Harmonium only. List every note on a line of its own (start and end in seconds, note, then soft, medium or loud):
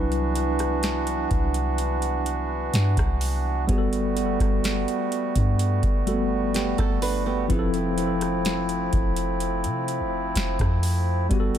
0.00 3.65 E3 medium
0.00 7.46 B3 medium
0.00 3.65 D4 medium
0.00 3.65 F#4 loud
3.69 7.46 G3 medium
3.69 7.46 A3 medium
3.69 7.46 F#4 medium
7.50 11.27 F3 medium
7.50 11.58 A3 medium
7.50 11.27 C4 medium
7.50 11.27 E4 medium
11.31 11.58 G3 medium
11.31 11.58 B3 medium
11.31 11.58 F#4 medium